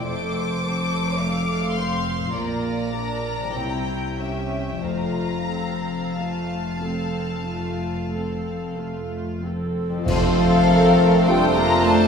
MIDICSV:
0, 0, Header, 1, 13, 480
1, 0, Start_track
1, 0, Key_signature, -1, "major"
1, 0, Tempo, 1147228
1, 28, Time_signature, 4, 2, 24, 8
1, 987, Tempo, 1207243
1, 1467, Tempo, 1301518
1, 3867, Tempo, 1207243
1, 4347, Tempo, 1138520
1, 4682, End_track
2, 0, Start_track
2, 0, Title_t, "Violin section"
2, 0, Program_c, 0, 48
2, 19, Note_on_c, 0, 86, 88
2, 725, Note_off_c, 0, 86, 0
2, 740, Note_on_c, 0, 84, 69
2, 985, Note_off_c, 0, 84, 0
2, 986, Note_on_c, 0, 82, 77
2, 1698, Note_on_c, 0, 79, 53
2, 1700, Note_off_c, 0, 82, 0
2, 1935, Note_off_c, 0, 79, 0
2, 1935, Note_on_c, 0, 82, 70
2, 2428, Note_on_c, 0, 81, 51
2, 2429, Note_off_c, 0, 82, 0
2, 3389, Note_off_c, 0, 81, 0
2, 3865, Note_on_c, 0, 77, 105
2, 4329, Note_off_c, 0, 77, 0
2, 4342, Note_on_c, 0, 79, 98
2, 4460, Note_on_c, 0, 82, 108
2, 4464, Note_off_c, 0, 79, 0
2, 4582, Note_off_c, 0, 82, 0
2, 4582, Note_on_c, 0, 81, 101
2, 4682, Note_off_c, 0, 81, 0
2, 4682, End_track
3, 0, Start_track
3, 0, Title_t, "Flute section"
3, 0, Program_c, 1, 73
3, 3873, Note_on_c, 1, 77, 92
3, 4333, Note_off_c, 1, 77, 0
3, 4348, Note_on_c, 1, 79, 89
3, 4467, Note_off_c, 1, 79, 0
3, 4467, Note_on_c, 1, 82, 85
3, 4586, Note_off_c, 1, 82, 0
3, 4587, Note_on_c, 1, 81, 90
3, 4682, Note_off_c, 1, 81, 0
3, 4682, End_track
4, 0, Start_track
4, 0, Title_t, "Violin section"
4, 0, Program_c, 2, 48
4, 27, Note_on_c, 2, 72, 57
4, 264, Note_off_c, 2, 72, 0
4, 274, Note_on_c, 2, 69, 53
4, 507, Note_off_c, 2, 69, 0
4, 507, Note_on_c, 2, 77, 69
4, 984, Note_on_c, 2, 74, 54
4, 988, Note_off_c, 2, 77, 0
4, 1456, Note_off_c, 2, 74, 0
4, 1460, Note_on_c, 2, 79, 58
4, 1691, Note_on_c, 2, 76, 45
4, 1697, Note_off_c, 2, 79, 0
4, 1937, Note_off_c, 2, 76, 0
4, 1937, Note_on_c, 2, 77, 52
4, 3627, Note_off_c, 2, 77, 0
4, 3869, Note_on_c, 2, 72, 87
4, 3871, Note_on_c, 2, 69, 87
4, 4096, Note_off_c, 2, 72, 0
4, 4113, Note_on_c, 2, 70, 89
4, 4332, Note_off_c, 2, 69, 0
4, 4343, Note_on_c, 2, 72, 90
4, 4347, Note_off_c, 2, 70, 0
4, 4347, Note_on_c, 2, 69, 90
4, 4682, Note_off_c, 2, 69, 0
4, 4682, Note_off_c, 2, 72, 0
4, 4682, End_track
5, 0, Start_track
5, 0, Title_t, "Viola section"
5, 0, Program_c, 3, 48
5, 21, Note_on_c, 3, 57, 51
5, 23, Note_on_c, 3, 69, 52
5, 249, Note_off_c, 3, 57, 0
5, 251, Note_off_c, 3, 69, 0
5, 273, Note_on_c, 3, 72, 44
5, 275, Note_on_c, 3, 60, 44
5, 506, Note_off_c, 3, 72, 0
5, 506, Note_on_c, 3, 57, 47
5, 506, Note_on_c, 3, 69, 46
5, 507, Note_off_c, 3, 60, 0
5, 742, Note_on_c, 3, 72, 46
5, 744, Note_off_c, 3, 57, 0
5, 744, Note_off_c, 3, 69, 0
5, 744, Note_on_c, 3, 60, 42
5, 987, Note_off_c, 3, 60, 0
5, 987, Note_off_c, 3, 72, 0
5, 991, Note_on_c, 3, 65, 45
5, 992, Note_on_c, 3, 58, 45
5, 1210, Note_off_c, 3, 58, 0
5, 1210, Note_off_c, 3, 65, 0
5, 1227, Note_on_c, 3, 62, 41
5, 1229, Note_on_c, 3, 70, 39
5, 1469, Note_off_c, 3, 62, 0
5, 1469, Note_on_c, 3, 60, 43
5, 1470, Note_off_c, 3, 70, 0
5, 1470, Note_on_c, 3, 64, 43
5, 1686, Note_off_c, 3, 60, 0
5, 1687, Note_off_c, 3, 64, 0
5, 1703, Note_on_c, 3, 67, 42
5, 1704, Note_on_c, 3, 61, 38
5, 1939, Note_on_c, 3, 57, 42
5, 1941, Note_on_c, 3, 65, 44
5, 1943, Note_off_c, 3, 61, 0
5, 1943, Note_off_c, 3, 67, 0
5, 2172, Note_off_c, 3, 57, 0
5, 2173, Note_off_c, 3, 65, 0
5, 2186, Note_on_c, 3, 60, 36
5, 2186, Note_on_c, 3, 69, 38
5, 2430, Note_on_c, 3, 57, 40
5, 2431, Note_on_c, 3, 65, 40
5, 2432, Note_off_c, 3, 60, 0
5, 2432, Note_off_c, 3, 69, 0
5, 2673, Note_off_c, 3, 57, 0
5, 2673, Note_off_c, 3, 65, 0
5, 2673, Note_on_c, 3, 60, 40
5, 2674, Note_on_c, 3, 69, 38
5, 2907, Note_on_c, 3, 57, 41
5, 2907, Note_on_c, 3, 65, 41
5, 2913, Note_off_c, 3, 60, 0
5, 2913, Note_off_c, 3, 69, 0
5, 3136, Note_off_c, 3, 57, 0
5, 3136, Note_off_c, 3, 65, 0
5, 3151, Note_on_c, 3, 69, 36
5, 3154, Note_on_c, 3, 60, 36
5, 3386, Note_on_c, 3, 57, 44
5, 3386, Note_on_c, 3, 65, 42
5, 3390, Note_off_c, 3, 69, 0
5, 3392, Note_off_c, 3, 60, 0
5, 3626, Note_off_c, 3, 57, 0
5, 3627, Note_off_c, 3, 65, 0
5, 3629, Note_on_c, 3, 60, 47
5, 3631, Note_on_c, 3, 69, 46
5, 3864, Note_off_c, 3, 69, 0
5, 3865, Note_off_c, 3, 60, 0
5, 3869, Note_on_c, 3, 69, 78
5, 3870, Note_on_c, 3, 60, 82
5, 4331, Note_off_c, 3, 69, 0
5, 4332, Note_off_c, 3, 60, 0
5, 4349, Note_on_c, 3, 62, 80
5, 4349, Note_on_c, 3, 65, 78
5, 4682, Note_off_c, 3, 62, 0
5, 4682, Note_off_c, 3, 65, 0
5, 4682, End_track
6, 0, Start_track
6, 0, Title_t, "Harp"
6, 0, Program_c, 4, 46
6, 0, Note_on_c, 4, 41, 45
6, 0, Note_on_c, 4, 57, 37
6, 0, Note_on_c, 4, 65, 35
6, 9, Note_on_c, 4, 72, 40
6, 913, Note_on_c, 4, 46, 49
6, 931, Note_on_c, 4, 58, 37
6, 945, Note_off_c, 4, 65, 0
6, 950, Note_on_c, 4, 65, 42
6, 967, Note_on_c, 4, 74, 41
6, 969, Note_off_c, 4, 41, 0
6, 979, Note_off_c, 4, 57, 0
6, 997, Note_off_c, 4, 72, 0
6, 1397, Note_on_c, 4, 48, 44
6, 1416, Note_on_c, 4, 55, 35
6, 1432, Note_on_c, 4, 64, 34
6, 1451, Note_on_c, 4, 73, 34
6, 1452, Note_off_c, 4, 46, 0
6, 1469, Note_off_c, 4, 65, 0
6, 1477, Note_off_c, 4, 74, 0
6, 1875, Note_on_c, 4, 41, 37
6, 1892, Note_on_c, 4, 53, 30
6, 1908, Note_on_c, 4, 65, 34
6, 1924, Note_on_c, 4, 72, 32
6, 1928, Note_off_c, 4, 48, 0
6, 1936, Note_off_c, 4, 58, 0
6, 1937, Note_off_c, 4, 55, 0
6, 1945, Note_off_c, 4, 64, 0
6, 1954, Note_off_c, 4, 73, 0
6, 3313, Note_off_c, 4, 41, 0
6, 3330, Note_off_c, 4, 53, 0
6, 3346, Note_off_c, 4, 65, 0
6, 3362, Note_off_c, 4, 72, 0
6, 3801, Note_on_c, 4, 41, 66
6, 3818, Note_on_c, 4, 57, 60
6, 3835, Note_on_c, 4, 65, 57
6, 3851, Note_on_c, 4, 72, 56
6, 4682, Note_off_c, 4, 41, 0
6, 4682, Note_off_c, 4, 57, 0
6, 4682, Note_off_c, 4, 65, 0
6, 4682, Note_off_c, 4, 72, 0
6, 4682, End_track
7, 0, Start_track
7, 0, Title_t, "Clarinet"
7, 0, Program_c, 5, 71
7, 3870, Note_on_c, 5, 60, 92
7, 4682, Note_off_c, 5, 60, 0
7, 4682, End_track
8, 0, Start_track
8, 0, Title_t, "Bassoon"
8, 0, Program_c, 6, 70
8, 3862, Note_on_c, 6, 57, 90
8, 4682, Note_off_c, 6, 57, 0
8, 4682, End_track
9, 0, Start_track
9, 0, Title_t, "French horn section"
9, 0, Program_c, 7, 60
9, 3873, Note_on_c, 7, 53, 101
9, 4333, Note_off_c, 7, 53, 0
9, 4347, Note_on_c, 7, 55, 88
9, 4467, Note_off_c, 7, 55, 0
9, 4472, Note_on_c, 7, 58, 81
9, 4588, Note_off_c, 7, 58, 0
9, 4599, Note_on_c, 7, 57, 73
9, 4682, Note_off_c, 7, 57, 0
9, 4682, End_track
10, 0, Start_track
10, 0, Title_t, "Cello section"
10, 0, Program_c, 8, 48
10, 26, Note_on_c, 8, 41, 58
10, 970, Note_off_c, 8, 41, 0
10, 986, Note_on_c, 8, 46, 50
10, 1457, Note_off_c, 8, 46, 0
10, 1467, Note_on_c, 8, 36, 45
10, 1938, Note_on_c, 8, 41, 46
10, 1942, Note_off_c, 8, 36, 0
10, 3770, Note_off_c, 8, 41, 0
10, 3869, Note_on_c, 8, 53, 95
10, 4331, Note_off_c, 8, 53, 0
10, 4347, Note_on_c, 8, 55, 82
10, 4463, Note_on_c, 8, 58, 91
10, 4467, Note_off_c, 8, 55, 0
10, 4583, Note_on_c, 8, 57, 87
10, 4584, Note_off_c, 8, 58, 0
10, 4682, Note_off_c, 8, 57, 0
10, 4682, End_track
11, 0, Start_track
11, 0, Title_t, "Timpani"
11, 0, Program_c, 10, 47
11, 1938, Note_on_c, 10, 41, 58
11, 2657, Note_off_c, 10, 41, 0
11, 3863, Note_on_c, 10, 41, 104
11, 4567, Note_off_c, 10, 41, 0
11, 4682, End_track
12, 0, Start_track
12, 0, Title_t, "Double bass section"
12, 0, Program_c, 11, 48
12, 25, Note_on_c, 11, 29, 58
12, 969, Note_off_c, 11, 29, 0
12, 987, Note_on_c, 11, 34, 55
12, 1458, Note_off_c, 11, 34, 0
12, 1465, Note_on_c, 11, 36, 46
12, 1940, Note_off_c, 11, 36, 0
12, 1941, Note_on_c, 11, 29, 46
12, 3771, Note_off_c, 11, 29, 0
12, 3868, Note_on_c, 11, 29, 80
12, 4682, Note_off_c, 11, 29, 0
12, 4682, End_track
13, 0, Start_track
13, 0, Title_t, "Drums"
13, 3871, Note_on_c, 9, 35, 84
13, 3871, Note_on_c, 9, 49, 79
13, 3911, Note_off_c, 9, 35, 0
13, 3911, Note_off_c, 9, 49, 0
13, 4682, End_track
0, 0, End_of_file